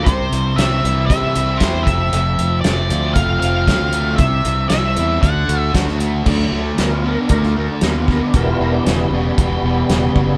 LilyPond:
<<
  \new Staff \with { instrumentName = "Lead electric guitar" } { \time 4/4 \key c \major \tempo 4 = 116 c''4 e''4 e''4 c''8 e''8~ | e''4 d''4 f''8 f''4. | e''4 e''4 fis''4 r4 | \key d \mixolydian r1 |
r1 | }
  \new Staff \with { instrumentName = "Tonewheel organ" } { \time 4/4 \key c \major r1 | r1 | r1 | \key d \mixolydian r4 bes'16 f'16 bes'16 d'16 bes'16 f'16 bes'16 d'16 bes'16 f'16 bes'16 d'16 |
bes'16 f'16 bes'16 d'16 <g b>2. | }
  \new Staff \with { instrumentName = "Tonewheel organ" } { \clef bass \time 4/4 \key c \major r1 | r1 | r1 | \key d \mixolydian <d fis a>8 r2. r8 |
<e g b>4. r2 r8 | }
  \new Staff \with { instrumentName = "Overdriven electric guitar" } { \clef bass \time 4/4 \key c \major c4 c'8 e8 g8 c'8 e'8 f,8 | f,4 c'8 f8 a8 c'8 f'8 a8 | c4 c'8 e8 d8 d'8 fis'8 a8 | \key d \mixolydian <d a>8 <d a>8 <d b>8 <d b>8 <d a>8 <d a>8 <d b>8 <d b>8 |
<e, b,>8 <e, b,>8 <e, cis>8 <e, cis>8 <e, b,>8 <e, b,>8 <e, cis>8 <e, cis>8 | }
  \new Staff \with { instrumentName = "Overdriven electric guitar" } { \clef bass \time 4/4 \key c \major c8 e8 g8 e'8 c'8 e'8 c'8 f,8 | f,8 f8 a8 f'8 c'8 f'8 c'8 a8 | c8 e8 g8 e'8 d8 fis'8 d'8 a8 | \key d \mixolydian <d a>8 <d a>8 <d b>8 <d b>8 <d a>8 <d a>8 <d b>8 <d b>8 |
<e, b,>8 <e, b,>8 <e, cis>8 <e, cis>8 <e, b,>8 <e, b,>8 <e, cis>8 <e, cis>8 | }
  \new Staff \with { instrumentName = "Fingered electric bass" } { \clef bass \time 4/4 \key c \major c,8 c,8 c,8 c,8 c8 c,8 e,8 f,,8 | f,,8 f,,8 f,,8 d,8 f,,8 f,,8 d,4 | c,8 c,8 c,8 e,8 d,8 d,8 d,4 | \key d \mixolydian d,8 d,8 d,4 d,4 ees,4 |
e,,8 e,,8 e,,8 e,,8 e,,8 e,,8 e,,8 fis,,8 | }
  \new DrumStaff \with { instrumentName = "Drums" } \drummode { \time 4/4 <hh bd>8 hh8 <hh sn>8 hh8 <hh bd>8 hh8 <hh bd sn>8 <hh bd>8 | hh8 hh8 <hh sn>8 hh8 <hh bd>8 hh8 <hh bd sn>8 hh8 | <hh bd>8 hh8 <hh sn>8 hh8 <hh bd>8 hh8 <hh bd sn>16 sn16 hh8 | <cymc bd>4 <hh sn>4 <hh bd>16 sn8. <hh sn>8 <bd sn>8 |
<hh bd>4 <hh sn>4 <hh bd>4 <hh sn>8 bd8 | }
>>